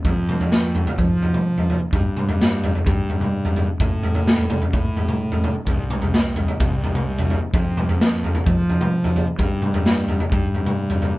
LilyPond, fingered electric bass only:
\new Staff \with { instrumentName = "Fingered electric bass" } { \clef bass \time 4/4 \key f \lydian \tempo 4 = 128 f,2 f2 | g,2 g,2 | a,2 a,2 | c,2 c,2 |
f,2 f2 | g,2 g,2 | }